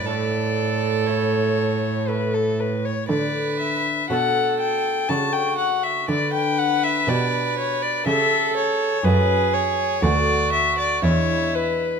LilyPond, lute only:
<<
  \new Staff \with { instrumentName = "Lute" } { \time 3/4 \key a \mixolydian \tempo 4 = 60 r4 <a e'>4 <a e'>4 | r4 <a d' fis'>4 <a d' fis'>4 | r4 <b d' g'>4 <a g'>4 | \key b \dorian <a cis' fis'>4 <a b fis'>4 <gis d' e'>4 | }
  \new Staff \with { instrumentName = "Lute" } { \clef bass \time 3/4 \key a \mixolydian a,2. | d4 b,4 cis4 | d4 b,4 cis4 | \key b \dorian fis,4 d,4 e,4 | }
>>